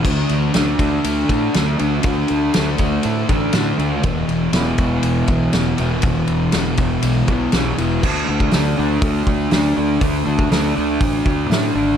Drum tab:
CC |x---------------|----------------|----------------|----------------|
RD |--x-x-x-x-x-x-x-|x-x-x-x-x-x-x-x-|x-x-x-x-x-x-x-x-|x-x-x-x-x-x-x-x-|
HH |----------------|----------------|----------------|----------------|
SD |----o-------o---|----o-------o---|----o-------o---|----o-------o---|
BD |o-----o---o-----|o-----o---o-----|o-----o---o-----|o-----o---o-----|

CC |x---------------|----------------|
RD |----------------|----------------|
HH |----o---o---o---|o---o---o---o---|
SD |----o-------o---|----o-------o---|
BD |o--o----o-o-----|o--o----o-o-----|